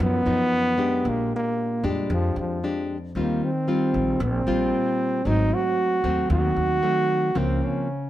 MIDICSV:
0, 0, Header, 1, 4, 480
1, 0, Start_track
1, 0, Tempo, 525394
1, 957, Time_signature, 4, 2, 24, 8
1, 7399, End_track
2, 0, Start_track
2, 0, Title_t, "Trombone"
2, 0, Program_c, 0, 57
2, 33, Note_on_c, 0, 59, 118
2, 996, Note_on_c, 0, 58, 95
2, 1009, Note_off_c, 0, 59, 0
2, 1216, Note_off_c, 0, 58, 0
2, 1244, Note_on_c, 0, 58, 92
2, 1669, Note_off_c, 0, 58, 0
2, 1709, Note_on_c, 0, 55, 73
2, 1918, Note_off_c, 0, 55, 0
2, 1949, Note_on_c, 0, 53, 88
2, 2158, Note_off_c, 0, 53, 0
2, 2193, Note_on_c, 0, 53, 77
2, 2623, Note_off_c, 0, 53, 0
2, 2918, Note_on_c, 0, 58, 77
2, 3147, Note_on_c, 0, 60, 89
2, 3161, Note_off_c, 0, 58, 0
2, 3853, Note_off_c, 0, 60, 0
2, 3870, Note_on_c, 0, 60, 99
2, 4817, Note_on_c, 0, 63, 100
2, 4831, Note_off_c, 0, 60, 0
2, 5063, Note_on_c, 0, 66, 104
2, 5076, Note_off_c, 0, 63, 0
2, 5771, Note_off_c, 0, 66, 0
2, 5777, Note_on_c, 0, 66, 110
2, 6746, Note_on_c, 0, 60, 89
2, 6760, Note_off_c, 0, 66, 0
2, 6987, Note_on_c, 0, 61, 82
2, 7001, Note_off_c, 0, 60, 0
2, 7399, Note_off_c, 0, 61, 0
2, 7399, End_track
3, 0, Start_track
3, 0, Title_t, "Nylon-string guitar"
3, 0, Program_c, 1, 24
3, 0, Note_on_c, 1, 42, 56
3, 0, Note_on_c, 1, 53, 52
3, 0, Note_on_c, 1, 63, 59
3, 200, Note_off_c, 1, 53, 0
3, 205, Note_off_c, 1, 63, 0
3, 235, Note_on_c, 1, 53, 60
3, 244, Note_on_c, 1, 63, 73
3, 678, Note_off_c, 1, 53, 0
3, 682, Note_off_c, 1, 63, 0
3, 710, Note_on_c, 1, 56, 64
3, 715, Note_on_c, 1, 62, 61
3, 720, Note_on_c, 1, 67, 64
3, 935, Note_off_c, 1, 42, 0
3, 953, Note_on_c, 1, 46, 54
3, 1637, Note_off_c, 1, 56, 0
3, 1637, Note_off_c, 1, 62, 0
3, 1641, Note_off_c, 1, 67, 0
3, 1677, Note_on_c, 1, 56, 62
3, 1681, Note_on_c, 1, 62, 66
3, 1685, Note_on_c, 1, 67, 73
3, 1892, Note_off_c, 1, 46, 0
3, 1926, Note_on_c, 1, 41, 57
3, 2360, Note_off_c, 1, 56, 0
3, 2362, Note_off_c, 1, 62, 0
3, 2362, Note_off_c, 1, 67, 0
3, 2408, Note_on_c, 1, 56, 52
3, 2412, Note_on_c, 1, 62, 59
3, 2416, Note_on_c, 1, 67, 59
3, 2714, Note_off_c, 1, 56, 0
3, 2714, Note_off_c, 1, 62, 0
3, 2714, Note_off_c, 1, 67, 0
3, 2859, Note_off_c, 1, 41, 0
3, 2886, Note_on_c, 1, 51, 54
3, 2888, Note_on_c, 1, 55, 50
3, 2890, Note_on_c, 1, 60, 54
3, 2898, Note_on_c, 1, 65, 56
3, 3192, Note_off_c, 1, 55, 0
3, 3194, Note_off_c, 1, 60, 0
3, 3196, Note_off_c, 1, 65, 0
3, 3360, Note_on_c, 1, 55, 53
3, 3364, Note_on_c, 1, 60, 51
3, 3367, Note_on_c, 1, 65, 57
3, 3819, Note_off_c, 1, 51, 0
3, 3837, Note_off_c, 1, 55, 0
3, 3837, Note_off_c, 1, 60, 0
3, 3840, Note_off_c, 1, 65, 0
3, 3842, Note_on_c, 1, 46, 56
3, 4084, Note_on_c, 1, 55, 69
3, 4088, Note_on_c, 1, 60, 68
3, 4092, Note_on_c, 1, 65, 75
3, 4764, Note_off_c, 1, 55, 0
3, 4766, Note_off_c, 1, 60, 0
3, 4767, Note_off_c, 1, 65, 0
3, 4777, Note_off_c, 1, 46, 0
3, 4806, Note_on_c, 1, 44, 56
3, 4806, Note_on_c, 1, 54, 50
3, 4810, Note_on_c, 1, 57, 52
3, 4815, Note_on_c, 1, 60, 64
3, 5484, Note_off_c, 1, 54, 0
3, 5486, Note_off_c, 1, 57, 0
3, 5489, Note_off_c, 1, 60, 0
3, 5518, Note_on_c, 1, 54, 63
3, 5520, Note_on_c, 1, 57, 65
3, 5523, Note_on_c, 1, 60, 73
3, 5739, Note_off_c, 1, 44, 0
3, 5752, Note_on_c, 1, 51, 54
3, 6200, Note_off_c, 1, 54, 0
3, 6200, Note_off_c, 1, 57, 0
3, 6203, Note_off_c, 1, 60, 0
3, 6235, Note_on_c, 1, 54, 60
3, 6239, Note_on_c, 1, 57, 59
3, 6242, Note_on_c, 1, 60, 59
3, 6679, Note_off_c, 1, 54, 0
3, 6679, Note_off_c, 1, 57, 0
3, 6682, Note_off_c, 1, 60, 0
3, 6691, Note_off_c, 1, 51, 0
3, 6714, Note_on_c, 1, 49, 59
3, 6717, Note_on_c, 1, 53, 58
3, 6719, Note_on_c, 1, 58, 50
3, 6723, Note_on_c, 1, 60, 58
3, 7194, Note_off_c, 1, 53, 0
3, 7195, Note_off_c, 1, 58, 0
3, 7197, Note_off_c, 1, 60, 0
3, 7399, Note_off_c, 1, 49, 0
3, 7399, End_track
4, 0, Start_track
4, 0, Title_t, "Upright bass"
4, 0, Program_c, 2, 32
4, 0, Note_on_c, 2, 42, 111
4, 220, Note_off_c, 2, 42, 0
4, 240, Note_on_c, 2, 42, 83
4, 462, Note_off_c, 2, 42, 0
4, 959, Note_on_c, 2, 34, 90
4, 1182, Note_off_c, 2, 34, 0
4, 1678, Note_on_c, 2, 41, 88
4, 1901, Note_off_c, 2, 41, 0
4, 1918, Note_on_c, 2, 41, 106
4, 2141, Note_off_c, 2, 41, 0
4, 2157, Note_on_c, 2, 41, 84
4, 2381, Note_off_c, 2, 41, 0
4, 2878, Note_on_c, 2, 39, 80
4, 3102, Note_off_c, 2, 39, 0
4, 3601, Note_on_c, 2, 34, 90
4, 3823, Note_off_c, 2, 34, 0
4, 3839, Note_on_c, 2, 34, 106
4, 4062, Note_off_c, 2, 34, 0
4, 4080, Note_on_c, 2, 34, 82
4, 4303, Note_off_c, 2, 34, 0
4, 4798, Note_on_c, 2, 32, 86
4, 5022, Note_off_c, 2, 32, 0
4, 5516, Note_on_c, 2, 39, 83
4, 5741, Note_off_c, 2, 39, 0
4, 5755, Note_on_c, 2, 39, 103
4, 5980, Note_off_c, 2, 39, 0
4, 5998, Note_on_c, 2, 39, 85
4, 6221, Note_off_c, 2, 39, 0
4, 6717, Note_on_c, 2, 37, 95
4, 6941, Note_off_c, 2, 37, 0
4, 7399, End_track
0, 0, End_of_file